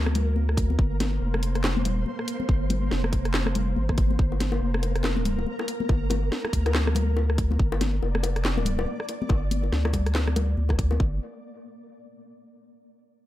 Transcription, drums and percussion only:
0.06 cross-stick medium
0.06 high conga medium
0.15 closed hi-hat medium
0.15 low conga medium
0.36 high conga medium
0.49 cross-stick medium
0.57 kick loud
0.57 closed hi-hat medium
0.70 high conga medium
0.79 kick loud
1.00 snare medium
1.00 closed hi-hat medium
1.00 high conga loud
1.34 cross-stick medium
1.34 high conga medium
1.43 closed hi-hat medium
1.55 cross-stick medium
1.55 closed hi-hat soft
1.64 snare loud
1.64 clap medium
1.77 high conga medium
1.85 closed hi-hat medium
1.85 low conga medium
2.06 high conga medium
2.19 cross-stick medium
2.28 closed hi-hat medium
2.40 high conga medium
2.49 kick loud
2.70 closed hi-hat medium
2.70 high conga loud
2.70 low conga medium
2.91 snare medium
3.04 cross-stick medium
3.04 high conga medium
3.13 kick medium
3.13 closed hi-hat medium
3.25 cross-stick medium
3.25 closed hi-hat soft
3.34 snare loud
3.34 clap medium
3.46 cross-stick medium
3.46 high conga medium
3.55 closed hi-hat medium
3.55 low conga medium
3.76 high conga medium
3.89 kick medium
3.89 cross-stick medium
3.98 kick loud
3.98 closed hi-hat medium
4.11 high conga medium
4.19 kick loud
4.32 high bongo medium
4.40 snare medium
4.40 closed hi-hat medium
4.40 high conga medium
4.52 high bongo medium
4.74 cross-stick medium
4.74 high conga medium
4.82 closed hi-hat medium
4.82 high bongo soft
4.96 cross-stick medium
4.96 closed hi-hat soft
5.03 snare loud
5.03 clap medium
5.03 high bongo medium
5.17 high conga medium
5.25 closed hi-hat medium
5.25 low conga medium
5.39 high bongo medium
5.47 high conga medium
5.59 cross-stick medium
5.59 high bongo medium
5.68 closed hi-hat medium
5.80 high conga medium
5.89 kick loud
5.89 high bongo medium
6.10 closed hi-hat medium
6.10 high bongo medium
6.10 high conga medium
6.32 snare medium
6.45 cross-stick medium
6.45 high bongo soft
6.45 high conga medium
6.53 kick medium
6.53 closed hi-hat medium
6.66 cross-stick medium
6.66 closed hi-hat soft
6.66 high bongo medium
6.75 snare loud
6.75 clap medium
6.87 cross-stick medium
6.87 high conga medium
6.95 closed hi-hat medium
6.95 high bongo medium
6.95 low conga medium
7.17 high bongo medium
7.17 high conga medium
7.30 cross-stick medium
7.38 kick loud
7.38 closed hi-hat medium
7.51 high bongo soft
7.51 high conga medium
7.59 kick loud
7.72 high bongo medium
7.81 snare medium
7.81 closed hi-hat medium
7.81 high conga medium
8.03 high bongo medium
8.15 cross-stick medium
8.15 high conga medium
8.23 closed hi-hat medium
8.23 high bongo medium
8.36 cross-stick medium
8.36 closed hi-hat soft
8.45 snare loud
8.45 clap medium
8.57 high bongo medium
8.57 high conga medium
8.65 closed hi-hat medium
8.65 low conga medium
8.79 high bongo medium
8.86 high conga medium
9.00 cross-stick medium
9.09 closed hi-hat medium
9.09 high bongo soft
9.22 high conga medium
9.29 kick loud
9.29 high bongo medium
9.51 closed hi-hat medium
9.51 high conga medium
9.63 high bongo medium
9.72 snare medium
9.85 cross-stick medium
9.85 high bongo medium
9.85 high conga medium
9.93 kick medium
9.93 closed hi-hat medium
9.93 low conga medium
10.06 cross-stick medium
10.06 closed hi-hat soft
10.15 snare loud
10.15 clap medium
10.15 high bongo medium
10.27 cross-stick medium
10.27 high conga medium
10.36 closed hi-hat medium
10.36 high bongo medium
10.36 low conga medium
10.57 high conga medium
10.69 kick medium
10.69 cross-stick medium
10.69 high bongo medium
10.79 kick loud
10.79 closed hi-hat medium
10.91 high bongo medium
10.91 high conga medium
11.00 kick loud

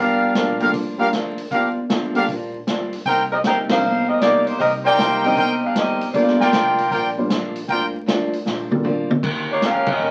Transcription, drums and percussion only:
0.35 snare medium
0.35 closed hi-hat medium
0.60 open hi-hat soft
0.73 kick soft
0.73 open hi-hat soft
1.13 snare medium
1.13 closed hi-hat soft
1.38 open hi-hat soft
1.51 kick soft
1.51 open hi-hat soft
1.90 snare medium
1.90 closed hi-hat soft
2.15 open hi-hat soft
2.28 kick soft
2.28 open hi-hat soft
2.67 snare medium
2.67 closed hi-hat soft
2.93 open hi-hat soft
3.05 kick soft
3.05 open hi-hat soft
3.44 snare medium
3.44 closed hi-hat medium
3.69 snare medium
3.69 ride medium
4.21 snare medium
4.21 closed hi-hat medium
4.47 open hi-hat soft
4.60 kick soft
4.60 open hi-hat soft
4.99 snare medium
4.99 closed hi-hat medium
5.24 open hi-hat soft
5.37 kick soft
5.37 open hi-hat soft
5.75 snare medium
5.75 closed hi-hat medium
6.01 open hi-hat soft
6.14 kick soft
6.14 open hi-hat soft
6.28 snare soft
6.40 snare soft
6.53 snare medium
6.53 closed hi-hat medium
6.78 open hi-hat soft
6.91 kick soft
6.91 open hi-hat soft
7.30 snare medium
7.30 closed hi-hat medium
7.56 open hi-hat soft
7.69 kick soft
7.69 open hi-hat soft
8.08 snare medium
8.08 closed hi-hat medium
8.33 open hi-hat soft
8.46 snare soft
8.71 high tom medium
8.85 high tom medium
9.11 high tom medium
9.23 kick medium
9.23 crash medium
9.62 snare medium
9.62 closed hi-hat medium
9.86 kick medium
9.86 crash medium

